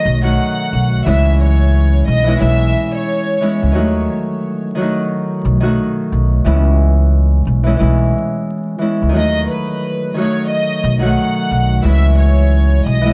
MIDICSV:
0, 0, Header, 1, 4, 480
1, 0, Start_track
1, 0, Key_signature, 4, "minor"
1, 0, Tempo, 674157
1, 754, Time_signature, 4, 2, 24, 8
1, 9349, End_track
2, 0, Start_track
2, 0, Title_t, "Violin section"
2, 0, Program_c, 0, 48
2, 0, Note_on_c, 0, 75, 92
2, 157, Note_off_c, 0, 75, 0
2, 175, Note_on_c, 0, 78, 82
2, 724, Note_off_c, 0, 78, 0
2, 759, Note_on_c, 0, 76, 103
2, 973, Note_off_c, 0, 76, 0
2, 1002, Note_on_c, 0, 73, 87
2, 1449, Note_off_c, 0, 73, 0
2, 1478, Note_on_c, 0, 75, 90
2, 1692, Note_off_c, 0, 75, 0
2, 1713, Note_on_c, 0, 76, 104
2, 2075, Note_off_c, 0, 76, 0
2, 2103, Note_on_c, 0, 73, 90
2, 2648, Note_off_c, 0, 73, 0
2, 6521, Note_on_c, 0, 75, 102
2, 6734, Note_off_c, 0, 75, 0
2, 6755, Note_on_c, 0, 71, 74
2, 7206, Note_off_c, 0, 71, 0
2, 7237, Note_on_c, 0, 73, 85
2, 7452, Note_off_c, 0, 73, 0
2, 7470, Note_on_c, 0, 75, 94
2, 7833, Note_off_c, 0, 75, 0
2, 7850, Note_on_c, 0, 78, 79
2, 8402, Note_off_c, 0, 78, 0
2, 8437, Note_on_c, 0, 76, 102
2, 8652, Note_off_c, 0, 76, 0
2, 8674, Note_on_c, 0, 73, 80
2, 9126, Note_off_c, 0, 73, 0
2, 9158, Note_on_c, 0, 75, 99
2, 9349, Note_off_c, 0, 75, 0
2, 9349, End_track
3, 0, Start_track
3, 0, Title_t, "Harp"
3, 0, Program_c, 1, 46
3, 0, Note_on_c, 1, 51, 94
3, 0, Note_on_c, 1, 54, 84
3, 150, Note_off_c, 1, 51, 0
3, 153, Note_on_c, 1, 51, 84
3, 157, Note_off_c, 1, 54, 0
3, 165, Note_on_c, 1, 54, 83
3, 166, Note_on_c, 1, 63, 77
3, 170, Note_on_c, 1, 66, 101
3, 179, Note_on_c, 1, 57, 79
3, 606, Note_off_c, 1, 57, 0
3, 607, Note_off_c, 1, 63, 0
3, 607, Note_off_c, 1, 66, 0
3, 750, Note_on_c, 1, 52, 87
3, 760, Note_on_c, 1, 56, 83
3, 761, Note_on_c, 1, 61, 85
3, 765, Note_on_c, 1, 64, 106
3, 770, Note_on_c, 1, 59, 87
3, 790, Note_off_c, 1, 51, 0
3, 790, Note_off_c, 1, 54, 0
3, 1591, Note_off_c, 1, 52, 0
3, 1593, Note_on_c, 1, 52, 91
3, 1606, Note_off_c, 1, 56, 0
3, 1613, Note_off_c, 1, 61, 0
3, 1615, Note_on_c, 1, 56, 79
3, 1616, Note_on_c, 1, 61, 82
3, 1619, Note_off_c, 1, 64, 0
3, 1621, Note_on_c, 1, 64, 98
3, 1635, Note_off_c, 1, 59, 0
3, 1638, Note_on_c, 1, 59, 85
3, 1686, Note_off_c, 1, 52, 0
3, 1689, Note_on_c, 1, 52, 89
3, 1696, Note_off_c, 1, 56, 0
3, 1698, Note_off_c, 1, 59, 0
3, 1699, Note_off_c, 1, 61, 0
3, 1700, Note_off_c, 1, 64, 0
3, 1704, Note_on_c, 1, 56, 83
3, 1705, Note_on_c, 1, 61, 75
3, 1711, Note_on_c, 1, 64, 100
3, 1722, Note_on_c, 1, 59, 76
3, 2420, Note_off_c, 1, 52, 0
3, 2423, Note_on_c, 1, 52, 77
3, 2425, Note_off_c, 1, 56, 0
3, 2431, Note_off_c, 1, 61, 0
3, 2434, Note_on_c, 1, 56, 76
3, 2434, Note_on_c, 1, 61, 75
3, 2435, Note_off_c, 1, 64, 0
3, 2437, Note_on_c, 1, 64, 86
3, 2440, Note_off_c, 1, 59, 0
3, 2443, Note_on_c, 1, 59, 72
3, 2646, Note_on_c, 1, 51, 92
3, 2659, Note_off_c, 1, 59, 0
3, 2659, Note_off_c, 1, 61, 0
3, 2660, Note_off_c, 1, 64, 0
3, 2665, Note_on_c, 1, 54, 83
3, 2666, Note_on_c, 1, 63, 89
3, 2670, Note_on_c, 1, 66, 99
3, 2684, Note_on_c, 1, 57, 85
3, 2710, Note_off_c, 1, 52, 0
3, 2710, Note_off_c, 1, 56, 0
3, 3378, Note_off_c, 1, 51, 0
3, 3381, Note_on_c, 1, 51, 95
3, 3393, Note_off_c, 1, 54, 0
3, 3396, Note_on_c, 1, 54, 89
3, 3403, Note_off_c, 1, 66, 0
3, 3406, Note_on_c, 1, 66, 100
3, 3408, Note_off_c, 1, 57, 0
3, 3411, Note_on_c, 1, 57, 82
3, 3425, Note_off_c, 1, 63, 0
3, 3427, Note_on_c, 1, 63, 90
3, 3848, Note_off_c, 1, 57, 0
3, 3849, Note_off_c, 1, 63, 0
3, 3849, Note_off_c, 1, 66, 0
3, 3987, Note_off_c, 1, 51, 0
3, 3990, Note_on_c, 1, 51, 85
3, 3997, Note_off_c, 1, 54, 0
3, 4000, Note_on_c, 1, 54, 84
3, 4008, Note_on_c, 1, 66, 101
3, 4012, Note_on_c, 1, 57, 83
3, 4022, Note_on_c, 1, 63, 79
3, 4447, Note_off_c, 1, 57, 0
3, 4447, Note_off_c, 1, 63, 0
3, 4447, Note_off_c, 1, 66, 0
3, 4588, Note_on_c, 1, 52, 87
3, 4600, Note_on_c, 1, 56, 81
3, 4602, Note_on_c, 1, 61, 84
3, 4606, Note_on_c, 1, 64, 105
3, 4611, Note_on_c, 1, 59, 87
3, 4630, Note_off_c, 1, 51, 0
3, 4630, Note_off_c, 1, 54, 0
3, 5433, Note_off_c, 1, 52, 0
3, 5435, Note_on_c, 1, 52, 94
3, 5447, Note_off_c, 1, 56, 0
3, 5454, Note_off_c, 1, 61, 0
3, 5456, Note_on_c, 1, 56, 81
3, 5457, Note_off_c, 1, 64, 0
3, 5457, Note_on_c, 1, 61, 82
3, 5460, Note_on_c, 1, 64, 99
3, 5473, Note_off_c, 1, 59, 0
3, 5476, Note_on_c, 1, 59, 85
3, 5527, Note_off_c, 1, 52, 0
3, 5530, Note_on_c, 1, 52, 90
3, 5537, Note_off_c, 1, 56, 0
3, 5539, Note_off_c, 1, 59, 0
3, 5540, Note_off_c, 1, 61, 0
3, 5542, Note_off_c, 1, 64, 0
3, 5546, Note_on_c, 1, 56, 86
3, 5547, Note_on_c, 1, 61, 73
3, 5551, Note_on_c, 1, 64, 98
3, 5561, Note_on_c, 1, 59, 77
3, 6251, Note_off_c, 1, 52, 0
3, 6254, Note_on_c, 1, 52, 76
3, 6264, Note_off_c, 1, 56, 0
3, 6271, Note_off_c, 1, 61, 0
3, 6273, Note_on_c, 1, 56, 74
3, 6274, Note_on_c, 1, 61, 76
3, 6275, Note_off_c, 1, 64, 0
3, 6278, Note_on_c, 1, 64, 85
3, 6289, Note_off_c, 1, 59, 0
3, 6292, Note_on_c, 1, 59, 69
3, 6472, Note_on_c, 1, 51, 94
3, 6495, Note_on_c, 1, 54, 81
3, 6499, Note_off_c, 1, 59, 0
3, 6500, Note_off_c, 1, 61, 0
3, 6500, Note_off_c, 1, 64, 0
3, 6509, Note_on_c, 1, 66, 99
3, 6517, Note_on_c, 1, 57, 82
3, 6538, Note_on_c, 1, 63, 89
3, 6550, Note_off_c, 1, 52, 0
3, 6550, Note_off_c, 1, 56, 0
3, 7218, Note_off_c, 1, 51, 0
3, 7221, Note_on_c, 1, 51, 92
3, 7233, Note_off_c, 1, 54, 0
3, 7236, Note_on_c, 1, 54, 85
3, 7242, Note_off_c, 1, 66, 0
3, 7245, Note_on_c, 1, 66, 96
3, 7247, Note_off_c, 1, 57, 0
3, 7250, Note_on_c, 1, 57, 85
3, 7262, Note_off_c, 1, 63, 0
3, 7265, Note_on_c, 1, 63, 88
3, 7688, Note_off_c, 1, 57, 0
3, 7689, Note_off_c, 1, 63, 0
3, 7689, Note_off_c, 1, 66, 0
3, 7822, Note_off_c, 1, 51, 0
3, 7825, Note_on_c, 1, 51, 88
3, 7834, Note_off_c, 1, 54, 0
3, 7842, Note_on_c, 1, 54, 86
3, 7843, Note_on_c, 1, 63, 79
3, 7849, Note_on_c, 1, 66, 101
3, 7860, Note_on_c, 1, 57, 82
3, 8285, Note_off_c, 1, 57, 0
3, 8286, Note_off_c, 1, 63, 0
3, 8286, Note_off_c, 1, 66, 0
3, 8417, Note_on_c, 1, 52, 90
3, 8433, Note_on_c, 1, 56, 84
3, 8442, Note_on_c, 1, 64, 105
3, 8448, Note_on_c, 1, 59, 86
3, 8463, Note_on_c, 1, 61, 86
3, 8470, Note_off_c, 1, 51, 0
3, 8470, Note_off_c, 1, 54, 0
3, 9261, Note_off_c, 1, 52, 0
3, 9264, Note_on_c, 1, 52, 94
3, 9283, Note_off_c, 1, 56, 0
3, 9286, Note_on_c, 1, 56, 82
3, 9296, Note_off_c, 1, 64, 0
3, 9298, Note_on_c, 1, 64, 99
3, 9304, Note_off_c, 1, 59, 0
3, 9307, Note_on_c, 1, 59, 87
3, 9325, Note_off_c, 1, 61, 0
3, 9328, Note_on_c, 1, 61, 85
3, 9349, Note_off_c, 1, 52, 0
3, 9349, Note_off_c, 1, 56, 0
3, 9349, Note_off_c, 1, 59, 0
3, 9349, Note_off_c, 1, 61, 0
3, 9349, Note_off_c, 1, 64, 0
3, 9349, End_track
4, 0, Start_track
4, 0, Title_t, "Upright bass"
4, 0, Program_c, 2, 32
4, 39, Note_on_c, 2, 35, 94
4, 253, Note_off_c, 2, 35, 0
4, 519, Note_on_c, 2, 35, 89
4, 734, Note_off_c, 2, 35, 0
4, 758, Note_on_c, 2, 37, 108
4, 1448, Note_off_c, 2, 37, 0
4, 1479, Note_on_c, 2, 35, 97
4, 1693, Note_off_c, 2, 35, 0
4, 1719, Note_on_c, 2, 35, 102
4, 1933, Note_off_c, 2, 35, 0
4, 2581, Note_on_c, 2, 37, 92
4, 2679, Note_off_c, 2, 37, 0
4, 2679, Note_on_c, 2, 39, 107
4, 2893, Note_off_c, 2, 39, 0
4, 3878, Note_on_c, 2, 35, 93
4, 4093, Note_off_c, 2, 35, 0
4, 4359, Note_on_c, 2, 35, 91
4, 4573, Note_off_c, 2, 35, 0
4, 4598, Note_on_c, 2, 37, 110
4, 5287, Note_off_c, 2, 37, 0
4, 5317, Note_on_c, 2, 35, 98
4, 5532, Note_off_c, 2, 35, 0
4, 5557, Note_on_c, 2, 35, 100
4, 5772, Note_off_c, 2, 35, 0
4, 6422, Note_on_c, 2, 37, 87
4, 6518, Note_off_c, 2, 37, 0
4, 6518, Note_on_c, 2, 39, 106
4, 6733, Note_off_c, 2, 39, 0
4, 7716, Note_on_c, 2, 35, 97
4, 7932, Note_off_c, 2, 35, 0
4, 8197, Note_on_c, 2, 35, 91
4, 8412, Note_off_c, 2, 35, 0
4, 8436, Note_on_c, 2, 37, 109
4, 9127, Note_off_c, 2, 37, 0
4, 9157, Note_on_c, 2, 35, 98
4, 9349, Note_off_c, 2, 35, 0
4, 9349, End_track
0, 0, End_of_file